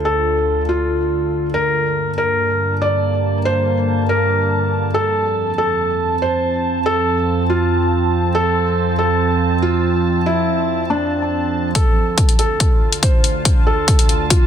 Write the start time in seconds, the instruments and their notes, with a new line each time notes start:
Already playing: ambient pad D2 D3 F4 A4
0.05 felt piano A4
0.69 felt piano F4
1.54 ambient pad G2 D3 A#3 A5, felt piano A#4
2.18 felt piano A#4
2.82 felt piano D5
3.45 felt piano C5
4.09 felt piano A#4
4.94 ambient pad F2 F3 C4, felt piano A4
5.58 felt piano A4
6.22 felt piano C5
6.86 felt piano A4
7.50 felt piano F4
8.35 felt piano A4
8.99 felt piano A4
9.62 felt piano F4
10.26 felt piano E4
10.90 felt piano D4
11.75 ambient pad D2 D3 F4 A5, felt piano A4, kick, closed hi-hat
12.18 kick, closed hi-hat
12.29 closed hi-hat
12.39 felt piano A4, closed hi-hat
12.60 kick, closed hi-hat
12.93 closed hi-hat
13.03 felt piano C5, kick, closed hi-hat
13.24 closed hi-hat
13.45 kick, closed hi-hat
13.67 felt piano A4
13.88 kick, closed hi-hat
13.99 closed hi-hat
14.09 closed hi-hat
14.30 felt piano F4, kick, closed hi-hat